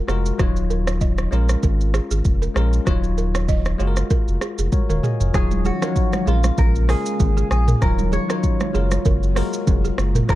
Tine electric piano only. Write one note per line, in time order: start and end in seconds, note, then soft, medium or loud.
0.00 0.07 G#3 medium
0.00 0.08 F4 medium
0.00 0.09 F#4 medium
0.00 0.10 A#4 loud
0.07 0.33 G#3 medium
0.07 0.34 F4 medium
0.07 0.34 F#4 medium
0.07 0.34 A#4 medium
0.38 1.32 F#3 medium
0.38 1.32 D#4 medium
0.38 1.31 F4 medium
0.38 1.33 C#5 medium
1.31 2.31 G#3 medium
1.31 2.32 C#4 medium
1.31 2.32 F4 medium
1.31 2.32 A#4 loud
2.55 2.81 G#3 medium
2.55 2.81 C#4 medium
2.55 2.81 F4 medium
2.55 2.82 A#4 medium
2.85 3.79 F#3 medium
2.85 3.79 D#4 medium
2.85 3.78 F4 medium
2.85 3.80 C#5 loud
3.78 4.79 G#3 medium
3.78 4.72 F4 medium
3.78 4.72 F#4 medium
3.78 3.87 G#4 medium
3.87 4.71 A#4 medium
4.72 4.89 F#4 medium
4.72 4.89 A#4 medium
4.72 4.88 C#5 medium
4.89 5.03 A#4 medium
4.89 5.03 C#5 medium
4.89 5.02 F5 medium
5.03 5.20 D#5 medium
5.03 5.32 G#5 medium
5.20 5.50 A#4 medium
5.20 5.34 C#5 medium
5.33 5.71 F#3 medium
5.33 5.72 D#4 medium
5.33 5.72 F4 medium
5.33 5.73 C#5 medium
5.81 5.87 F3 medium
5.81 6.27 D#4 medium
5.81 6.28 C#5 medium
5.81 6.27 F5 medium
5.87 6.30 F#3 medium
6.26 6.77 G#3 medium
6.26 6.34 C4 medium
6.26 6.78 F4 medium
6.26 6.78 A#4 medium
6.33 6.81 C#4 medium
6.88 7.64 G#3 medium
6.88 7.64 C#4 medium
6.88 7.64 F4 medium
6.88 7.65 A#4 medium
7.80 8.19 F#3 medium
7.80 8.19 D#4 medium
7.80 8.20 F4 medium
7.80 8.20 C#5 medium
8.28 8.74 F#3 medium
8.28 8.74 D#4 medium
8.28 8.73 F4 medium
8.28 8.75 C#5 medium
8.73 9.25 G#3 medium
8.73 9.25 F4 medium
8.73 9.25 F#4 medium
8.73 9.26 A#4 medium
9.35 10.11 G#3 medium
9.35 10.11 F4 medium
9.35 10.12 F#4 medium
9.35 10.12 A#4 medium
10.28 10.35 F#3 medium
10.28 10.35 D#4 medium
10.28 10.35 F4 medium
10.28 10.35 C#5 medium